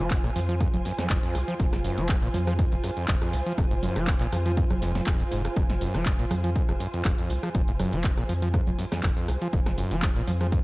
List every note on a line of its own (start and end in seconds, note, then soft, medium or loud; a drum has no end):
0.00 0.30 F1 medium
0.00 0.12 F3 medium
0.00 10.64 F4 medium
0.00 10.64 C5 medium
0.00 10.64 G#5 medium
0.11 0.18 F2 loud
0.11 kick loud
0.11 clap loud
0.11 closed hi-hat medium
0.24 0.30 A#2 loud
0.24 cross-stick medium
0.24 closed hi-hat soft
0.36 0.67 F2 medium
0.36 0.40 F3 medium
0.36 open hi-hat loud
0.49 0.55 F3 medium
0.49 closed hi-hat medium
0.60 0.68 F2 loud
0.60 kick loud
0.60 cross-stick medium
0.60 closed hi-hat medium
0.74 0.81 F1 medium
0.74 0.78 F2 medium
0.74 closed hi-hat soft
0.74 low conga medium
0.85 0.93 F#2 medium
0.85 snare soft
0.85 open hi-hat loud
0.99 1.08 F2 medium
0.99 cross-stick medium
0.99 snare medium
0.99 closed hi-hat medium
0.99 low conga medium
1.10 1.19 F1 medium
1.10 1.17 F2 loud
1.10 kick loud
1.10 clap loud
1.10 closed hi-hat medium
1.23 1.36 F2 medium
1.23 closed hi-hat soft
1.35 1.39 F1 medium
1.35 1.44 C2 medium
1.35 cross-stick medium
1.35 open hi-hat loud
1.48 1.54 F3 medium
1.48 closed hi-hat medium
1.60 1.91 F1 loud
1.60 1.67 F2 medium
1.60 kick loud
1.60 closed hi-hat medium
1.73 1.77 G#2 medium
1.73 cross-stick medium
1.73 snare medium
1.73 closed hi-hat soft
1.84 1.99 F#2 medium
1.84 open hi-hat loud
1.98 2.28 F1 medium
1.98 2.11 F3 medium
1.98 snare soft
1.98 closed hi-hat soft
2.09 2.16 F2 loud
2.09 kick loud
2.09 cross-stick medium
2.09 clap loud
2.09 closed hi-hat medium
2.22 2.29 A#2 loud
2.22 closed hi-hat soft
2.34 2.65 F2 medium
2.34 2.38 F3 medium
2.34 open hi-hat loud
2.34 low conga medium
2.47 2.54 F3 medium
2.47 cross-stick medium
2.47 closed hi-hat medium
2.59 2.66 F2 loud
2.59 kick loud
2.59 closed hi-hat medium
2.72 2.80 F1 medium
2.72 2.76 F2 medium
2.72 closed hi-hat soft
2.84 2.91 F#2 medium
2.84 cross-stick medium
2.84 open hi-hat loud
2.97 3.06 F2 medium
2.97 closed hi-hat medium
3.08 3.17 F1 medium
3.08 3.16 F2 loud
3.08 kick loud
3.08 clap loud
3.08 closed hi-hat medium
3.22 3.35 F2 medium
3.22 cross-stick medium
3.22 closed hi-hat soft
3.33 3.38 F1 medium
3.33 3.42 C2 medium
3.33 open hi-hat loud
3.46 3.53 F3 medium
3.46 closed hi-hat medium
3.58 3.89 F1 loud
3.58 3.65 F2 medium
3.58 kick loud
3.58 cross-stick medium
3.58 closed hi-hat medium
3.71 3.75 G#2 medium
3.71 closed hi-hat soft
3.83 3.98 F#2 medium
3.83 open hi-hat loud
3.83 low conga medium
3.96 4.26 F1 medium
3.96 4.09 F3 medium
3.96 cross-stick medium
3.96 snare soft
3.96 closed hi-hat soft
4.07 4.15 F2 loud
4.07 kick loud
4.07 clap loud
4.07 closed hi-hat medium
4.21 4.27 A#2 loud
4.21 clap soft
4.21 closed hi-hat soft
4.32 4.63 F2 medium
4.32 4.37 F3 medium
4.32 cross-stick medium
4.32 open hi-hat loud
4.46 4.52 F3 medium
4.46 closed hi-hat medium
4.57 4.64 F2 loud
4.57 kick loud
4.57 closed hi-hat medium
4.70 5.01 F1 loud
4.70 4.74 F2 medium
4.70 cross-stick medium
4.70 closed hi-hat soft
4.70 low conga medium
4.82 4.93 F2 loud
4.82 snare soft
4.82 open hi-hat loud
4.95 5.02 F2 loud
4.95 snare medium
4.95 closed hi-hat medium
4.95 low conga loud
5.06 5.24 D#1 medium
5.06 5.18 F2 medium
5.06 kick loud
5.06 cross-stick medium
5.06 clap loud
5.06 closed hi-hat medium
5.20 5.24 F2 loud
5.20 closed hi-hat soft
5.32 5.49 F1 medium
5.32 5.42 G#2 medium
5.32 open hi-hat loud
5.45 5.49 F2 medium
5.45 cross-stick medium
5.45 closed hi-hat medium
5.56 5.87 F1 loud
5.56 5.64 F2 medium
5.56 kick loud
5.56 cross-stick medium
5.56 closed hi-hat medium
5.70 5.73 G#2 medium
5.70 snare medium
5.70 closed hi-hat soft
5.81 5.96 F#2 medium
5.81 open hi-hat loud
5.94 6.25 F1 medium
5.94 6.07 F3 medium
5.94 cross-stick medium
5.94 snare soft
5.94 closed hi-hat soft
6.06 6.13 F2 loud
6.06 kick loud
6.06 clap loud
6.06 closed hi-hat medium
6.19 6.25 A#2 loud
6.19 closed hi-hat soft
6.31 6.62 F2 medium
6.31 6.35 F3 medium
6.31 cross-stick medium
6.31 open hi-hat loud
6.31 low conga medium
6.44 6.50 F3 medium
6.44 closed hi-hat medium
6.56 6.63 F2 loud
6.56 kick loud
6.56 closed hi-hat medium
6.69 6.77 F1 medium
6.69 6.73 F2 medium
6.69 cross-stick medium
6.69 closed hi-hat soft
6.80 6.88 F#2 medium
6.80 open hi-hat loud
6.94 7.03 F2 medium
6.94 closed hi-hat medium
7.05 7.14 F1 medium
7.05 7.12 F2 loud
7.05 kick loud
7.05 cross-stick medium
7.05 clap loud
7.05 closed hi-hat medium
7.18 7.31 F2 medium
7.18 closed hi-hat soft
7.30 7.34 F1 medium
7.30 7.39 C2 medium
7.30 open hi-hat loud
7.43 7.50 F3 medium
7.43 cross-stick medium
7.43 closed hi-hat medium
7.55 7.86 F1 loud
7.55 7.62 F2 medium
7.55 kick loud
7.55 closed hi-hat medium
7.68 7.72 G#2 medium
7.68 closed hi-hat soft
7.80 7.94 F#2 medium
7.80 cross-stick medium
7.80 open hi-hat loud
7.80 low conga medium
7.93 8.23 F1 medium
7.93 8.06 F3 medium
7.93 snare soft
7.93 closed hi-hat medium
8.04 8.12 F2 loud
8.04 kick loud
8.04 clap loud
8.04 closed hi-hat medium
8.18 8.24 A#2 loud
8.18 cross-stick medium
8.18 closed hi-hat soft
8.29 8.60 F2 medium
8.29 8.33 F3 medium
8.29 open hi-hat loud
8.42 8.49 F3 medium
8.42 closed hi-hat medium
8.54 8.61 F2 loud
8.54 kick loud
8.54 cross-stick medium
8.54 closed hi-hat medium
8.67 8.75 F1 medium
8.67 8.71 F2 medium
8.67 closed hi-hat soft
8.67 low conga medium
8.79 8.86 F#2 medium
8.79 snare soft
8.79 open hi-hat loud
8.92 9.01 F2 medium
8.92 cross-stick medium
8.92 snare medium
8.92 closed hi-hat medium
8.92 low conga loud
9.03 9.12 F1 medium
9.03 9.11 F2 loud
9.03 kick loud
9.03 clap loud
9.03 closed hi-hat medium
9.17 9.30 F2 medium
9.17 closed hi-hat soft
9.28 9.33 F1 medium
9.28 9.37 C2 medium
9.28 cross-stick medium
9.28 open hi-hat loud
9.41 9.48 F3 medium
9.41 closed hi-hat medium
9.53 9.84 F1 loud
9.53 9.60 F2 medium
9.53 kick loud
9.53 closed hi-hat medium
9.66 9.70 G#2 medium
9.66 cross-stick medium
9.66 snare medium
9.66 closed hi-hat soft
9.78 9.93 F#2 medium
9.78 open hi-hat loud
9.91 10.21 F1 medium
9.91 10.04 F3 medium
9.91 snare soft
9.91 closed hi-hat medium
10.02 10.10 F2 loud
10.02 kick loud
10.02 cross-stick medium
10.02 clap loud
10.02 closed hi-hat medium
10.16 10.22 A#2 loud
10.16 closed hi-hat soft
10.27 10.58 F2 medium
10.27 10.32 F3 medium
10.27 open hi-hat loud
10.27 low conga medium
10.41 10.47 F3 medium
10.41 cross-stick medium
10.41 closed hi-hat medium
10.52 10.60 F2 loud
10.52 kick loud
10.52 closed hi-hat medium